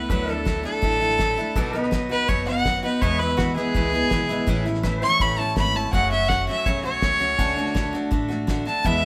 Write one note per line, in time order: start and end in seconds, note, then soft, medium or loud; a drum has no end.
0.00 0.11 B3 soft
0.00 0.31 B4 medium
0.10 0.63 D2 medium
0.10 0.28 D3 medium
0.10 0.28 F#3 medium
0.10 0.29 A3 medium
0.10 0.28 D4 medium
0.10 0.26 E4 loud
0.10 0.35 B4 medium
0.10 0.36 E5 medium
0.10 kick medium
0.10 snare soft
0.28 0.45 A3 soft
0.28 0.46 D4 soft
0.28 0.46 E4 soft
0.28 0.64 A4 medium
0.28 snare soft
0.35 1.54 A4 medium
0.35 1.55 D5 medium
0.45 0.64 F#3 medium
0.45 0.65 A3 medium
0.45 0.64 D4 medium
0.45 0.62 E4 medium
0.45 kick medium
0.45 snare loud
0.45 hi-hat pedal medium
0.64 0.82 A3 soft
0.64 0.82 D4 medium
0.64 0.82 E4 medium
0.64 1.71 A4 loud
0.64 snare soft
0.82 1.36 A1 medium
0.82 1.01 D3 medium
0.82 1.01 F#3 medium
0.82 1.01 A3 medium
0.82 1.01 D4 medium
0.82 0.99 E4 medium
0.82 kick loud
0.82 snare soft
1.00 1.19 A3 soft
1.00 1.20 D4 soft
1.00 1.19 E4 medium
1.00 snare soft
1.10 snare soft
1.18 1.37 F#3 medium
1.18 1.38 A3 medium
1.18 1.38 D4 medium
1.18 1.36 E4 medium
1.18 kick medium
1.18 snare loud
1.18 hi-hat pedal medium
1.38 1.57 A3 soft
1.38 1.57 D4 medium
1.38 1.56 E4 medium
1.38 snare soft
1.56 2.09 B1 medium
1.56 1.74 B2 medium
1.56 1.74 F#3 medium
1.56 1.75 B3 medium
1.56 1.74 D#4 loud
1.56 1.72 F#4 loud
1.56 1.81 A4 medium
1.56 1.78 D5 medium
1.56 kick loud
1.56 snare soft
1.73 1.91 B3 soft
1.73 1.92 D#4 medium
1.73 1.92 F#4 medium
1.73 snare soft
1.78 3.01 B4 medium
1.78 3.01 D#5 medium
1.83 snare soft
1.91 2.10 F#3 medium
1.91 2.11 B3 medium
1.91 2.10 D#4 medium
1.91 2.08 F#4 medium
1.91 kick medium
1.91 snare loud
1.91 hi-hat pedal medium
2.09 2.28 B3 soft
2.09 2.29 D#4 medium
2.09 2.28 F#4 medium
2.09 2.30 B4 loud
2.09 snare soft
2.28 2.82 F#1 medium
2.28 2.47 B2 medium
2.28 2.47 F#3 medium
2.28 2.47 B3 medium
2.28 2.47 D#4 medium
2.28 2.45 F#4 medium
2.28 2.46 C#5 loud
2.28 kick loud
2.28 snare soft
2.46 2.65 B3 soft
2.46 2.66 D#4 soft
2.46 2.65 F#4 soft
2.46 2.83 F#5 loud
2.46 snare soft
2.65 2.83 F#3 medium
2.65 2.84 B3 medium
2.65 2.83 D#4 medium
2.65 2.82 F#4 medium
2.65 kick medium
2.65 snare loud
2.65 hi-hat pedal medium
2.83 3.02 B3 medium
2.83 3.02 D#4 medium
2.83 3.01 F#4 medium
2.83 3.03 B4 medium
2.83 snare soft
3.02 3.20 E2 medium
3.02 3.55 E2 medium
3.02 3.20 B2 medium
3.02 3.20 E3 medium
3.02 3.20 G#3 medium
3.02 3.19 B3 medium
3.02 3.18 E4 medium
3.02 4.46 B4 medium
3.02 3.21 C#5 loud
3.02 3.23 D#5 medium
3.02 kick loud
3.02 snare soft
3.19 3.36 E3 soft
3.19 3.37 G#3 soft
3.19 3.38 B3 soft
3.19 3.38 E4 soft
3.19 3.39 B4 loud
3.19 4.47 E5 medium
3.19 snare soft
3.30 snare soft
3.37 3.56 E3 medium
3.37 3.56 G#3 medium
3.37 3.56 B3 medium
3.37 3.55 E4 medium
3.37 3.55 F#4 medium
3.37 kick medium
3.37 snare loud
3.37 hi-hat pedal medium
3.56 3.74 E3 soft
3.56 3.75 G#3 soft
3.56 3.75 B3 medium
3.56 3.74 E4 medium
3.56 4.62 G#4 loud
3.56 snare soft
3.74 4.06 C#2 medium
3.74 3.93 E2 medium
3.74 3.93 B2 medium
3.74 3.93 E3 medium
3.74 3.93 G#3 medium
3.74 3.93 B3 medium
3.74 3.92 E4 medium
3.74 kick loud
3.74 snare soft
3.93 4.09 E3 soft
3.93 4.11 G#3 soft
3.93 4.11 B3 medium
3.93 4.11 E4 soft
3.93 snare soft
4.02 snare soft
4.10 4.42 B1 medium
4.10 4.29 E3 medium
4.10 4.30 G#3 medium
4.10 4.29 B3 medium
4.10 4.28 E4 medium
4.10 kick medium
4.10 snare loud
4.10 hi-hat pedal loud
4.29 4.46 E3 medium
4.29 4.48 G#3 medium
4.29 4.48 B3 medium
4.29 4.47 E4 medium
4.29 snare soft
4.47 5.01 A1 medium
4.47 4.65 A2 medium
4.47 4.66 E3 medium
4.47 4.66 A3 medium
4.47 4.66 C#4 medium
4.47 4.64 E4 medium
4.47 kick medium
4.47 snare soft
4.66 4.84 A3 soft
4.66 4.85 C#4 medium
4.66 4.84 E4 medium
4.66 snare soft
4.75 snare soft
4.83 5.02 E3 medium
4.83 5.03 A3 medium
4.83 5.02 C#4 medium
4.83 5.01 E4 medium
4.83 5.09 B4 medium
4.83 5.93 E5 medium
4.83 kick medium
4.83 snare loud
4.83 hi-hat pedal medium
5.02 5.20 A3 soft
5.02 5.21 C#4 soft
5.02 5.20 E4 medium
5.02 5.23 C#6 loud
5.02 snare soft
5.09 5.92 C#5 medium
5.09 snare soft
5.20 5.51 A1 medium
5.20 5.39 A2 medium
5.20 5.39 E3 medium
5.20 5.39 A3 medium
5.20 5.39 C#4 medium
5.20 5.37 E4 medium
5.20 5.41 B5 medium
5.20 kick loud
5.20 snare soft
5.38 5.56 A3 soft
5.38 5.57 C#4 soft
5.38 5.57 E4 soft
5.38 5.57 A5 medium
5.38 snare soft
5.56 5.88 G#1 medium
5.56 5.75 E3 medium
5.56 5.75 A3 medium
5.56 5.75 C#4 medium
5.56 5.73 E4 medium
5.56 5.78 B5 medium
5.56 kick medium
5.56 snare loud
5.56 hi-hat pedal medium
5.75 5.93 A3 medium
5.75 5.93 C#4 soft
5.75 5.93 E4 medium
5.75 5.92 A5 medium
5.75 snare soft
5.93 6.46 F#1 medium
5.93 6.11 F#2 medium
5.93 6.12 C#3 medium
5.93 6.12 F#3 medium
5.93 6.12 A3 medium
5.93 6.11 C#4 medium
5.93 6.10 F#4 medium
5.93 7.37 C#5 medium
5.93 6.11 F#5 loud
5.93 7.38 F#5 medium
5.93 kick loud
5.93 snare soft
6.11 6.28 F#3 soft
6.11 6.30 A3 soft
6.11 6.30 C#4 medium
6.11 6.29 F#4 medium
6.11 6.30 E5 medium
6.11 snare soft
6.28 6.48 F#3 medium
6.28 6.49 A3 medium
6.28 6.48 C#4 medium
6.28 6.46 F#4 medium
6.28 6.47 F#5 medium
6.28 kick medium
6.28 snare loud
6.28 hi-hat pedal medium
6.47 6.65 F#3 soft
6.47 6.66 A3 soft
6.47 6.66 C#4 medium
6.47 6.66 F#4 medium
6.47 6.67 E5 medium
6.47 snare soft
6.66 6.97 B1 medium
6.66 6.84 F#2 medium
6.66 6.84 C#3 medium
6.66 6.85 F#3 medium
6.66 6.85 A3 medium
6.66 6.83 C#4 medium
6.66 6.82 F#4 medium
6.66 6.84 C#5 medium
6.66 kick loud
6.66 snare soft
6.83 7.00 F#3 soft
6.83 7.02 A3 medium
6.83 7.03 C#4 medium
6.83 7.02 F#4 soft
6.83 7.91 C#5 loud
6.83 snare soft
7.02 7.34 C#2 medium
7.02 7.20 F#3 medium
7.02 7.21 A3 medium
7.02 7.20 C#4 medium
7.02 7.18 F#4 medium
7.02 kick medium
7.02 snare loud
7.02 hi-hat pedal medium
7.20 7.38 F#3 soft
7.20 7.38 A3 soft
7.20 7.39 C#4 medium
7.20 7.39 F#4 medium
7.20 snare soft
7.39 7.92 D2 medium
7.39 7.57 D3 loud
7.39 7.58 A3 loud
7.39 7.59 C#4 medium
7.39 7.57 D4 loud
7.39 7.55 F#4 loud
7.39 8.84 F#5 medium
7.39 kick medium
7.39 snare soft
7.56 7.75 A3 soft
7.56 7.76 D4 medium
7.56 8.83 D4 medium
7.56 7.75 F#4 medium
7.56 snare soft
7.66 snare soft
7.75 7.93 D3 medium
7.75 7.94 A3 medium
7.75 7.94 D4 medium
7.75 7.92 F#4 medium
7.75 kick medium
7.75 snare loud
7.75 hi-hat pedal medium
7.93 8.10 A3 medium
7.93 8.11 D4 medium
7.93 8.12 F#4 medium
7.93 snare soft
8.11 8.65 A1 medium
8.11 8.30 D3 medium
8.11 8.30 A3 medium
8.11 8.29 D4 medium
8.11 8.27 F#4 medium
8.11 kick loud
8.11 snare soft
8.28 8.47 A3 soft
8.28 8.48 D4 medium
8.28 8.48 F#4 medium
8.28 snare soft
8.47 8.66 D3 medium
8.47 8.67 A3 medium
8.47 8.66 D4 medium
8.47 8.64 F#4 medium
8.47 kick medium
8.47 snare loud
8.47 hi-hat pedal medium
8.65 8.85 A3 medium
8.65 8.85 D4 medium
8.65 8.84 F#4 medium
8.65 8.87 A5 medium
8.65 snare soft
8.84 9.03 E2 medium
8.84 9.05 E2 medium
8.84 9.03 B2 medium
8.84 9.03 E3 medium
8.84 9.04 G#3 medium
8.84 9.03 B3 medium
8.84 9.02 E4 medium
8.84 9.05 E5 loud
8.84 kick medium
8.84 snare soft